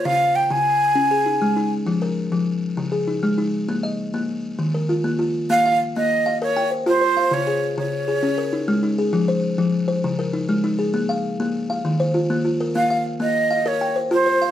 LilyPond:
<<
  \new Staff \with { instrumentName = "Flute" } { \time 12/8 \key bes \dorian \tempo 4. = 132 f''4 g''8 aes''1 r8 | r1. | r1. | f''4 r8 ees''4. des''4 r8 c''4. |
des''4. des''1 r8 | r1. | r1. | f''4 r8 ees''4. des''4 r8 c''4. | }
  \new Staff \with { instrumentName = "Kalimba" } { \time 12/8 \key bes \dorian c''8 r2. aes'8 ees'4 ees'4~ | ees'8 bes'4. r4. aes'8 ees'4 ees'4~ | ees'8 ees''4. r4. bes'8 f'4 f'4~ | f'8 f''4. r8 f''4 g''8 c''4 c''8 f''8~ |
f''8 aes'4. r8 aes'4 bes'8 ees'4 ees'8 aes'8~ | aes'8 c''4. r8 c''4 bes'8 ees'4 ees'8 aes'8~ | aes'8 f''4. r8 f''4 c''8 f'4 f'8 bes'8~ | bes'8 f''4. r8 f''4 g''8 c''4 c''8 f''8 | }
  \new Staff \with { instrumentName = "Kalimba" } { \time 12/8 \key bes \dorian des4 r8 des4 r8 des'4 r8 aes4 r8 | f4 r8 f4 r8 des4 r8 aes4 r8 | bes4 r8 bes4 r8 ees4 r8 bes4 r8 | bes4 r8 bes4 r8 bes'4 r8 f'4 r8 |
des4 r8 des4 r8 des'4 r8 aes4 r8 | f4 r8 f4 r8 des4 r8 aes4 r8 | bes4 r8 bes4 r8 ees4 r8 bes4 r8 | bes4 r8 bes4 r8 bes'4 r8 f'4 r8 | }
>>